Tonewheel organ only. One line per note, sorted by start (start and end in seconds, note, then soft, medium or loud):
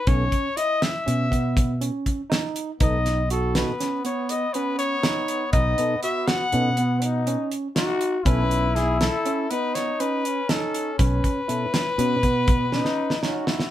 0.07 0.25 B2 medium
0.07 0.25 B3 medium
0.07 0.25 C#4 medium
0.07 0.25 A4 medium
2.80 2.98 B2 medium
2.80 2.98 B3 medium
2.80 2.98 D#4 soft
2.80 2.98 A4 medium
3.56 3.73 B2 medium
3.56 3.73 B3 medium
3.56 3.73 D#4 medium
3.56 3.73 A4 medium
5.79 5.96 B2 medium
5.79 5.96 B3 medium
5.79 5.96 D#4 medium
5.79 5.96 A4 medium
6.52 6.69 B2 medium
6.52 6.70 B3 medium
6.52 6.70 D#4 medium
6.52 6.70 A4 medium
8.26 8.43 B2 medium
8.26 8.44 B3 medium
8.26 8.43 C#4 medium
8.26 8.44 A4 medium
11.49 11.66 B2 medium
11.49 11.66 B3 medium
11.49 11.66 C#4 medium
11.49 11.66 A4 medium
11.99 12.16 B2 medium
11.99 12.16 B3 medium
11.99 12.16 C#4 medium
11.99 12.16 F#4 medium